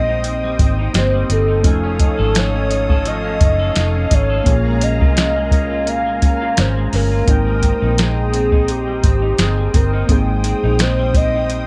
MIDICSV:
0, 0, Header, 1, 7, 480
1, 0, Start_track
1, 0, Key_signature, -4, "major"
1, 0, Tempo, 703400
1, 1123, Time_signature, 4, 2, 24, 8
1, 7962, End_track
2, 0, Start_track
2, 0, Title_t, "Analog synth pad"
2, 0, Program_c, 0, 89
2, 0, Note_on_c, 0, 72, 77
2, 0, Note_on_c, 0, 75, 73
2, 0, Note_on_c, 0, 79, 73
2, 0, Note_on_c, 0, 87, 92
2, 1096, Note_off_c, 0, 72, 0
2, 1096, Note_off_c, 0, 79, 0
2, 1097, Note_off_c, 0, 75, 0
2, 1098, Note_off_c, 0, 87, 0
2, 1122, Note_on_c, 0, 73, 81
2, 1123, Note_on_c, 0, 87, 89
2, 1125, Note_on_c, 0, 77, 73
2, 1126, Note_on_c, 0, 69, 72
2, 3024, Note_off_c, 0, 73, 0
2, 3024, Note_off_c, 0, 87, 0
2, 3026, Note_off_c, 0, 69, 0
2, 3045, Note_on_c, 0, 80, 86
2, 3047, Note_on_c, 0, 70, 73
2, 3048, Note_on_c, 0, 82, 75
2, 4938, Note_off_c, 0, 77, 0
2, 4946, Note_off_c, 0, 70, 0
2, 4946, Note_off_c, 0, 80, 0
2, 4965, Note_on_c, 0, 72, 75
2, 4965, Note_on_c, 0, 87, 86
2, 4966, Note_on_c, 0, 79, 73
2, 6859, Note_off_c, 0, 82, 0
2, 7962, Note_off_c, 0, 72, 0
2, 7962, Note_off_c, 0, 79, 0
2, 7962, Note_off_c, 0, 87, 0
2, 7962, End_track
3, 0, Start_track
3, 0, Title_t, "Soft synth lead"
3, 0, Program_c, 1, 80
3, 0, Note_on_c, 1, 75, 120
3, 407, Note_off_c, 1, 75, 0
3, 658, Note_on_c, 1, 72, 97
3, 896, Note_on_c, 1, 69, 98
3, 907, Note_off_c, 1, 72, 0
3, 1620, Note_on_c, 1, 73, 110
3, 1630, Note_off_c, 1, 69, 0
3, 2097, Note_on_c, 1, 75, 109
3, 2108, Note_off_c, 1, 73, 0
3, 2824, Note_on_c, 1, 73, 111
3, 2835, Note_off_c, 1, 75, 0
3, 3297, Note_on_c, 1, 75, 114
3, 3307, Note_off_c, 1, 73, 0
3, 4011, Note_off_c, 1, 75, 0
3, 4021, Note_on_c, 1, 77, 116
3, 4236, Note_off_c, 1, 77, 0
3, 4259, Note_on_c, 1, 77, 110
3, 4497, Note_on_c, 1, 72, 108
3, 4507, Note_off_c, 1, 77, 0
3, 4740, Note_on_c, 1, 70, 111
3, 4750, Note_off_c, 1, 72, 0
3, 5459, Note_on_c, 1, 68, 105
3, 5470, Note_off_c, 1, 70, 0
3, 5938, Note_on_c, 1, 67, 98
3, 5948, Note_off_c, 1, 68, 0
3, 6171, Note_off_c, 1, 67, 0
3, 6180, Note_on_c, 1, 67, 97
3, 6421, Note_on_c, 1, 68, 102
3, 6431, Note_off_c, 1, 67, 0
3, 6655, Note_on_c, 1, 70, 89
3, 6666, Note_off_c, 1, 68, 0
3, 6896, Note_on_c, 1, 68, 99
3, 6907, Note_off_c, 1, 70, 0
3, 7377, Note_on_c, 1, 72, 99
3, 7387, Note_off_c, 1, 68, 0
3, 7616, Note_on_c, 1, 75, 108
3, 7626, Note_off_c, 1, 72, 0
3, 7962, Note_off_c, 1, 75, 0
3, 7962, End_track
4, 0, Start_track
4, 0, Title_t, "Synth keys"
4, 0, Program_c, 2, 88
4, 0, Control_c, 2, 64, 127
4, 0, Note_on_c, 2, 58, 68
4, 0, Note_on_c, 2, 60, 65
4, 0, Note_on_c, 2, 63, 60
4, 0, Note_on_c, 2, 79, 77
4, 605, Note_off_c, 2, 58, 0
4, 611, Note_off_c, 2, 60, 0
4, 617, Note_off_c, 2, 63, 0
4, 622, Note_off_c, 2, 79, 0
4, 635, Note_on_c, 2, 58, 48
4, 642, Note_on_c, 2, 60, 45
4, 647, Note_on_c, 2, 63, 45
4, 652, Note_on_c, 2, 67, 56
4, 1107, Note_on_c, 2, 57, 64
4, 1117, Note_on_c, 2, 61, 64
4, 1119, Note_off_c, 2, 58, 0
4, 1120, Note_off_c, 2, 63, 0
4, 1123, Note_off_c, 2, 60, 0
4, 1127, Note_off_c, 2, 67, 0
4, 1128, Note_on_c, 2, 63, 65
4, 1133, Control_c, 2, 64, 0
4, 1140, Note_on_c, 2, 80, 73
4, 1240, Control_c, 2, 64, 127
4, 3008, Note_off_c, 2, 57, 0
4, 3013, Note_off_c, 2, 61, 0
4, 3019, Note_off_c, 2, 63, 0
4, 3025, Note_off_c, 2, 80, 0
4, 3026, Note_on_c, 2, 58, 68
4, 3037, Note_on_c, 2, 61, 61
4, 3050, Note_on_c, 2, 65, 65
4, 3053, Control_c, 2, 64, 0
4, 3060, Note_on_c, 2, 68, 79
4, 3166, Control_c, 2, 64, 127
4, 4928, Note_off_c, 2, 58, 0
4, 4934, Note_off_c, 2, 61, 0
4, 4940, Note_off_c, 2, 65, 0
4, 4945, Note_off_c, 2, 68, 0
4, 4951, Note_on_c, 2, 58, 66
4, 4962, Note_on_c, 2, 60, 60
4, 4972, Control_c, 2, 64, 0
4, 4973, Note_on_c, 2, 63, 64
4, 4985, Note_on_c, 2, 79, 75
4, 5078, Control_c, 2, 64, 127
4, 6851, Note_off_c, 2, 58, 0
4, 6856, Note_off_c, 2, 60, 0
4, 6862, Note_off_c, 2, 63, 0
4, 6868, Note_off_c, 2, 79, 0
4, 6870, Note_on_c, 2, 58, 71
4, 6881, Note_on_c, 2, 60, 61
4, 6890, Note_on_c, 2, 63, 64
4, 6903, Note_on_c, 2, 79, 77
4, 7962, Note_off_c, 2, 58, 0
4, 7962, Note_off_c, 2, 60, 0
4, 7962, Note_off_c, 2, 63, 0
4, 7962, Note_off_c, 2, 79, 0
4, 7962, End_track
5, 0, Start_track
5, 0, Title_t, "Clean electric guitar"
5, 0, Program_c, 3, 27
5, 0, Note_on_c, 3, 44, 92
5, 0, Note_on_c, 3, 55, 62
5, 0, Note_on_c, 3, 60, 64
5, 62, Note_on_c, 3, 63, 60
5, 165, Note_off_c, 3, 44, 0
5, 293, Note_off_c, 3, 55, 0
5, 301, Note_on_c, 3, 55, 60
5, 397, Note_off_c, 3, 60, 0
5, 406, Note_on_c, 3, 60, 59
5, 536, Note_off_c, 3, 63, 0
5, 538, Note_on_c, 3, 63, 68
5, 638, Note_off_c, 3, 60, 0
5, 646, Note_on_c, 3, 60, 69
5, 770, Note_off_c, 3, 55, 0
5, 778, Note_on_c, 3, 55, 67
5, 877, Note_off_c, 3, 60, 0
5, 885, Note_on_c, 3, 60, 61
5, 1010, Note_off_c, 3, 63, 0
5, 1013, Note_on_c, 3, 63, 63
5, 1120, Note_off_c, 3, 55, 0
5, 1123, Note_on_c, 3, 53, 89
5, 1177, Note_off_c, 3, 60, 0
5, 1253, Note_on_c, 3, 61, 61
5, 1274, Note_off_c, 3, 63, 0
5, 1363, Note_on_c, 3, 63, 65
5, 1493, Note_on_c, 3, 69, 66
5, 1593, Note_off_c, 3, 63, 0
5, 1601, Note_on_c, 3, 63, 67
5, 1732, Note_off_c, 3, 61, 0
5, 1735, Note_on_c, 3, 61, 62
5, 1833, Note_off_c, 3, 63, 0
5, 1842, Note_on_c, 3, 63, 66
5, 1969, Note_off_c, 3, 69, 0
5, 1978, Note_on_c, 3, 69, 62
5, 2079, Note_off_c, 3, 53, 0
5, 2082, Note_on_c, 3, 53, 85
5, 2210, Note_off_c, 3, 61, 0
5, 2213, Note_on_c, 3, 61, 58
5, 2313, Note_off_c, 3, 63, 0
5, 2322, Note_on_c, 3, 63, 56
5, 2444, Note_off_c, 3, 69, 0
5, 2452, Note_on_c, 3, 69, 69
5, 2549, Note_off_c, 3, 63, 0
5, 2558, Note_on_c, 3, 63, 69
5, 2692, Note_off_c, 3, 61, 0
5, 2694, Note_on_c, 3, 61, 66
5, 2791, Note_off_c, 3, 63, 0
5, 2799, Note_on_c, 3, 63, 66
5, 2925, Note_off_c, 3, 69, 0
5, 2933, Note_on_c, 3, 69, 64
5, 3038, Note_on_c, 3, 46, 93
5, 3094, Note_off_c, 3, 63, 0
5, 3095, Note_off_c, 3, 69, 0
5, 3174, Note_off_c, 3, 53, 0
5, 3177, Note_on_c, 3, 56, 64
5, 3280, Note_off_c, 3, 61, 0
5, 3283, Note_on_c, 3, 61, 65
5, 3416, Note_on_c, 3, 65, 74
5, 3519, Note_off_c, 3, 61, 0
5, 3527, Note_on_c, 3, 61, 62
5, 3655, Note_off_c, 3, 56, 0
5, 3658, Note_on_c, 3, 56, 61
5, 3753, Note_off_c, 3, 61, 0
5, 3761, Note_on_c, 3, 61, 63
5, 3885, Note_off_c, 3, 65, 0
5, 3893, Note_on_c, 3, 65, 65
5, 3992, Note_off_c, 3, 46, 0
5, 4000, Note_on_c, 3, 46, 79
5, 4132, Note_off_c, 3, 56, 0
5, 4134, Note_on_c, 3, 56, 54
5, 4236, Note_off_c, 3, 61, 0
5, 4244, Note_on_c, 3, 61, 61
5, 4368, Note_off_c, 3, 65, 0
5, 4377, Note_on_c, 3, 65, 70
5, 4476, Note_off_c, 3, 61, 0
5, 4484, Note_on_c, 3, 61, 64
5, 4615, Note_off_c, 3, 56, 0
5, 4617, Note_on_c, 3, 56, 60
5, 4718, Note_off_c, 3, 61, 0
5, 4726, Note_on_c, 3, 61, 67
5, 4849, Note_off_c, 3, 65, 0
5, 4857, Note_on_c, 3, 65, 59
5, 4962, Note_off_c, 3, 46, 0
5, 4968, Note_on_c, 3, 44, 92
5, 5017, Note_off_c, 3, 65, 0
5, 5018, Note_off_c, 3, 61, 0
5, 5094, Note_off_c, 3, 56, 0
5, 5096, Note_on_c, 3, 55, 59
5, 5204, Note_on_c, 3, 60, 63
5, 5336, Note_on_c, 3, 63, 71
5, 5437, Note_off_c, 3, 60, 0
5, 5445, Note_on_c, 3, 60, 62
5, 5576, Note_off_c, 3, 55, 0
5, 5676, Note_off_c, 3, 60, 0
5, 5684, Note_on_c, 3, 60, 66
5, 5812, Note_off_c, 3, 63, 0
5, 5815, Note_on_c, 3, 63, 59
5, 5926, Note_off_c, 3, 44, 0
5, 6058, Note_on_c, 3, 55, 61
5, 6155, Note_off_c, 3, 60, 0
5, 6163, Note_on_c, 3, 60, 60
5, 6290, Note_off_c, 3, 63, 0
5, 6293, Note_on_c, 3, 63, 64
5, 6395, Note_off_c, 3, 60, 0
5, 6403, Note_on_c, 3, 60, 64
5, 6527, Note_off_c, 3, 55, 0
5, 6536, Note_on_c, 3, 55, 63
5, 6636, Note_off_c, 3, 60, 0
5, 6644, Note_on_c, 3, 60, 67
5, 6775, Note_off_c, 3, 63, 0
5, 6778, Note_on_c, 3, 63, 59
5, 6885, Note_on_c, 3, 44, 86
5, 7016, Note_off_c, 3, 55, 0
5, 7120, Note_off_c, 3, 60, 0
5, 7128, Note_on_c, 3, 60, 62
5, 7257, Note_off_c, 3, 63, 0
5, 7260, Note_on_c, 3, 63, 74
5, 7363, Note_off_c, 3, 60, 0
5, 7371, Note_on_c, 3, 60, 57
5, 7502, Note_on_c, 3, 55, 65
5, 7605, Note_off_c, 3, 60, 0
5, 7613, Note_on_c, 3, 60, 67
5, 7744, Note_off_c, 3, 63, 0
5, 7747, Note_on_c, 3, 63, 65
5, 7845, Note_off_c, 3, 44, 0
5, 7962, Note_off_c, 3, 55, 0
5, 7962, Note_off_c, 3, 60, 0
5, 7962, Note_off_c, 3, 63, 0
5, 7962, End_track
6, 0, Start_track
6, 0, Title_t, "Fingered electric bass"
6, 0, Program_c, 4, 33
6, 0, Note_on_c, 4, 34, 96
6, 377, Note_off_c, 4, 34, 0
6, 404, Note_on_c, 4, 32, 97
6, 596, Note_off_c, 4, 32, 0
6, 642, Note_on_c, 4, 31, 100
6, 835, Note_off_c, 4, 31, 0
6, 884, Note_on_c, 4, 31, 84
6, 1123, Note_off_c, 4, 31, 0
6, 1123, Note_on_c, 4, 29, 116
6, 1421, Note_off_c, 4, 29, 0
6, 1497, Note_on_c, 4, 32, 95
6, 2297, Note_off_c, 4, 32, 0
6, 2326, Note_on_c, 4, 30, 92
6, 2517, Note_off_c, 4, 30, 0
6, 2566, Note_on_c, 4, 29, 95
6, 2757, Note_off_c, 4, 29, 0
6, 2806, Note_on_c, 4, 32, 97
6, 2997, Note_off_c, 4, 32, 0
6, 3045, Note_on_c, 4, 34, 115
6, 3422, Note_off_c, 4, 34, 0
6, 3422, Note_on_c, 4, 36, 88
6, 4247, Note_off_c, 4, 36, 0
6, 4247, Note_on_c, 4, 34, 85
6, 4490, Note_on_c, 4, 32, 94
6, 4500, Note_off_c, 4, 34, 0
6, 4680, Note_off_c, 4, 32, 0
6, 4730, Note_on_c, 4, 31, 92
6, 4920, Note_off_c, 4, 31, 0
6, 4965, Note_on_c, 4, 32, 105
6, 5262, Note_off_c, 4, 32, 0
6, 5338, Note_on_c, 4, 34, 93
6, 6138, Note_off_c, 4, 34, 0
6, 6167, Note_on_c, 4, 32, 101
6, 6358, Note_off_c, 4, 32, 0
6, 6405, Note_on_c, 4, 31, 95
6, 6597, Note_off_c, 4, 31, 0
6, 6649, Note_on_c, 4, 31, 100
6, 6839, Note_off_c, 4, 31, 0
6, 6884, Note_on_c, 4, 32, 110
6, 7182, Note_off_c, 4, 32, 0
6, 7257, Note_on_c, 4, 34, 93
6, 7962, Note_off_c, 4, 34, 0
6, 7962, End_track
7, 0, Start_track
7, 0, Title_t, "Drums"
7, 164, Note_on_c, 9, 42, 79
7, 232, Note_off_c, 9, 42, 0
7, 405, Note_on_c, 9, 36, 99
7, 405, Note_on_c, 9, 42, 68
7, 473, Note_off_c, 9, 36, 0
7, 473, Note_off_c, 9, 42, 0
7, 644, Note_on_c, 9, 42, 87
7, 648, Note_on_c, 9, 38, 101
7, 712, Note_off_c, 9, 42, 0
7, 716, Note_off_c, 9, 38, 0
7, 885, Note_on_c, 9, 42, 88
7, 954, Note_off_c, 9, 42, 0
7, 1121, Note_on_c, 9, 42, 79
7, 1122, Note_on_c, 9, 36, 100
7, 1189, Note_off_c, 9, 42, 0
7, 1191, Note_off_c, 9, 36, 0
7, 1361, Note_on_c, 9, 42, 86
7, 1363, Note_on_c, 9, 36, 96
7, 1429, Note_off_c, 9, 42, 0
7, 1431, Note_off_c, 9, 36, 0
7, 1604, Note_on_c, 9, 42, 92
7, 1611, Note_on_c, 9, 38, 104
7, 1672, Note_off_c, 9, 42, 0
7, 1679, Note_off_c, 9, 38, 0
7, 1846, Note_on_c, 9, 42, 68
7, 1915, Note_off_c, 9, 42, 0
7, 1974, Note_on_c, 9, 36, 93
7, 2043, Note_off_c, 9, 36, 0
7, 2085, Note_on_c, 9, 42, 74
7, 2153, Note_off_c, 9, 42, 0
7, 2325, Note_on_c, 9, 42, 73
7, 2326, Note_on_c, 9, 36, 104
7, 2393, Note_off_c, 9, 42, 0
7, 2394, Note_off_c, 9, 36, 0
7, 2562, Note_on_c, 9, 42, 82
7, 2567, Note_on_c, 9, 38, 97
7, 2631, Note_off_c, 9, 42, 0
7, 2635, Note_off_c, 9, 38, 0
7, 2805, Note_on_c, 9, 42, 94
7, 2806, Note_on_c, 9, 36, 99
7, 2873, Note_off_c, 9, 42, 0
7, 2875, Note_off_c, 9, 36, 0
7, 3044, Note_on_c, 9, 36, 98
7, 3044, Note_on_c, 9, 42, 81
7, 3112, Note_off_c, 9, 36, 0
7, 3113, Note_off_c, 9, 42, 0
7, 3285, Note_on_c, 9, 42, 87
7, 3353, Note_off_c, 9, 42, 0
7, 3421, Note_on_c, 9, 36, 93
7, 3489, Note_off_c, 9, 36, 0
7, 3527, Note_on_c, 9, 42, 84
7, 3533, Note_on_c, 9, 38, 106
7, 3595, Note_off_c, 9, 42, 0
7, 3602, Note_off_c, 9, 38, 0
7, 3762, Note_on_c, 9, 36, 106
7, 3768, Note_on_c, 9, 42, 64
7, 3831, Note_off_c, 9, 36, 0
7, 3837, Note_off_c, 9, 42, 0
7, 4006, Note_on_c, 9, 42, 69
7, 4074, Note_off_c, 9, 42, 0
7, 4245, Note_on_c, 9, 42, 73
7, 4247, Note_on_c, 9, 36, 100
7, 4314, Note_off_c, 9, 42, 0
7, 4316, Note_off_c, 9, 36, 0
7, 4485, Note_on_c, 9, 42, 88
7, 4489, Note_on_c, 9, 38, 98
7, 4553, Note_off_c, 9, 42, 0
7, 4557, Note_off_c, 9, 38, 0
7, 4728, Note_on_c, 9, 46, 64
7, 4735, Note_on_c, 9, 38, 38
7, 4796, Note_off_c, 9, 46, 0
7, 4804, Note_off_c, 9, 38, 0
7, 4965, Note_on_c, 9, 36, 106
7, 4965, Note_on_c, 9, 42, 86
7, 5033, Note_off_c, 9, 42, 0
7, 5034, Note_off_c, 9, 36, 0
7, 5205, Note_on_c, 9, 42, 87
7, 5206, Note_on_c, 9, 36, 84
7, 5273, Note_off_c, 9, 42, 0
7, 5274, Note_off_c, 9, 36, 0
7, 5447, Note_on_c, 9, 42, 90
7, 5453, Note_on_c, 9, 38, 106
7, 5515, Note_off_c, 9, 42, 0
7, 5522, Note_off_c, 9, 38, 0
7, 5688, Note_on_c, 9, 42, 66
7, 5756, Note_off_c, 9, 42, 0
7, 5817, Note_on_c, 9, 36, 92
7, 5885, Note_off_c, 9, 36, 0
7, 5925, Note_on_c, 9, 42, 75
7, 5994, Note_off_c, 9, 42, 0
7, 6166, Note_on_c, 9, 36, 100
7, 6166, Note_on_c, 9, 42, 73
7, 6234, Note_off_c, 9, 42, 0
7, 6235, Note_off_c, 9, 36, 0
7, 6404, Note_on_c, 9, 42, 92
7, 6408, Note_on_c, 9, 38, 102
7, 6472, Note_off_c, 9, 42, 0
7, 6476, Note_off_c, 9, 38, 0
7, 6647, Note_on_c, 9, 36, 101
7, 6647, Note_on_c, 9, 42, 90
7, 6715, Note_off_c, 9, 36, 0
7, 6715, Note_off_c, 9, 42, 0
7, 6884, Note_on_c, 9, 36, 105
7, 6885, Note_on_c, 9, 42, 82
7, 6952, Note_off_c, 9, 36, 0
7, 6953, Note_off_c, 9, 42, 0
7, 7124, Note_on_c, 9, 42, 92
7, 7192, Note_off_c, 9, 42, 0
7, 7363, Note_on_c, 9, 42, 84
7, 7370, Note_on_c, 9, 38, 104
7, 7431, Note_off_c, 9, 42, 0
7, 7438, Note_off_c, 9, 38, 0
7, 7601, Note_on_c, 9, 36, 105
7, 7606, Note_on_c, 9, 42, 63
7, 7669, Note_off_c, 9, 36, 0
7, 7674, Note_off_c, 9, 42, 0
7, 7845, Note_on_c, 9, 42, 73
7, 7914, Note_off_c, 9, 42, 0
7, 7962, End_track
0, 0, End_of_file